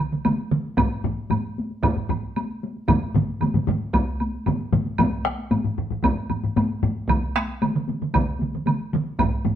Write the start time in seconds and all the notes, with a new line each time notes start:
0.12 taiko mid, taiko high
0.25 taiko mid, taiko high, high woodblock
0.39 taiko high
0.51 taiko mid, taiko high
0.65 taiko high
0.77 taiko, taiko low-mid, taiko high, high woodblock
0.91 taiko high
1.04 taiko low-mid, taiko high
1.18 taiko high
1.30 taiko low-mid, taiko high, high woodblock
1.58 taiko high
1.71 taiko high
1.83 taiko, taiko low-mid, taiko high, high woodblock
1.96 taiko low-mid, taiko high
2.09 taiko low-mid, taiko high, high woodblock
2.23 taiko high
2.36 taiko high, high woodblock
2.50 taiko high
2.63 taiko high
2.76 taiko high
2.88 taiko, taiko low-mid, taiko mid, taiko high, high woodblock
3.03 taiko high
3.14 taiko low-mid, taiko mid, taiko high
3.29 taiko high
3.41 taiko low-mid, taiko mid, taiko high, high woodblock
3.54 taiko low-mid, taiko mid, taiko high
3.67 taiko low-mid, taiko mid, taiko high
3.82 taiko high
3.94 taiko, taiko high, high woodblock
4.08 taiko high
4.20 taiko high, high woodblock
4.35 taiko high
4.46 taiko low-mid, taiko mid, taiko high, high woodblock
4.61 taiko high
4.72 taiko low-mid, taiko mid, taiko high
4.86 taiko high
4.98 taiko, taiko low-mid, taiko high, high woodblock
5.13 taiko high
5.25 taiko rim, taiko high
5.38 taiko high
5.51 taiko low-mid, taiko high, high woodblock
5.64 taiko low-mid
5.78 taiko low-mid
5.90 taiko low-mid, taiko high
6.03 taiko, taiko low-mid, taiko high, high woodblock
6.18 taiko high
6.30 taiko low-mid, taiko high, high woodblock
6.43 taiko low-mid, taiko high
6.56 taiko low-mid, taiko high, high woodblock
6.70 taiko high
6.83 taiko low-mid, taiko high
6.97 taiko high
7.09 taiko, taiko mid, taiko high, high woodblock
7.22 taiko high
7.36 taiko rim, taiko high
7.48 taiko high
7.62 taiko mid, taiko high, high woodblock
7.75 taiko mid
7.88 taiko mid, taiko high
8.01 taiko mid, taiko high
8.14 taiko, taiko mid, taiko high, high woodblock
8.27 taiko high
8.39 taiko mid, taiko high
8.53 taiko mid, taiko high
8.66 taiko mid, taiko high, high woodblock
8.80 taiko high
8.93 taiko mid, taiko high
9.06 taiko high
9.19 taiko, taiko low-mid, taiko high, high woodblock
9.33 taiko high
9.45 taiko low-mid, taiko high